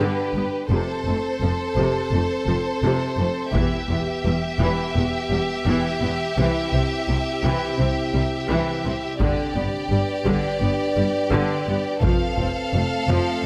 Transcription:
Already playing: D4 G4 B4
0.00 G2 D3
0.34 G1 G2 B3
0.70 F1 F2 C3 C4 A4 C5
1.05 F1 F2 A3
1.41 F1 F2 F3
1.77 F1 F2 C3
2.12 F1 F2 A3
2.47 F1 F2 F3
2.83 F1 F2 C3
3.18 F1 F2 A3
3.53 E1 E2 E3 B3 G4 E5, taiko
3.89 E1 E2 B3
4.24 E1 E2 G3
4.59 E1 E2 E3
4.95 E1 E2 B3
5.30 E1 E2 G3
5.66 E1 E2 E3
6.02 E1 E2 B3
6.37 C2 C3 E3 E4
6.72 C2 C3 C4
7.08 C2 C3 G3
7.43 C2 C3 E3
7.79 C2 C3 C4
8.14 C2 C3 G3
8.49 C2 C3 E3
8.84 C2 C3 C4
9.19 G1 G2 D3 D4 G4 D5, taiko
9.55 G1 G2 B3
9.90 G1 G2 G3 B4
10.25 G1 G2 D3, taiko
10.60 G1 G2 B3
10.96 G1 G2 G3
11.32 G1 G2 D3
11.67 G1 G2 B3
12.02 F1 F2 F3 C4 A4 F5, taiko
12.37 F1 F2 C4
12.73 F1 F2 A3
13.08 F1 F2 F3

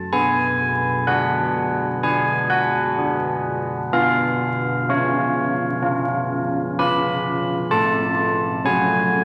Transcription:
Already playing: C#4
0.13 B3 G#5
1.07 D4 G#4 F#5
2.03 D4 G#4 G#5
2.50 F#5
2.98 D4 G#4
3.93 B3 F5
4.89 C#4 F4 C#5
5.82 C#4 F4
6.79 C#4 F4 B5
7.71 A3 A5
8.65 C#4 F#4 G#5

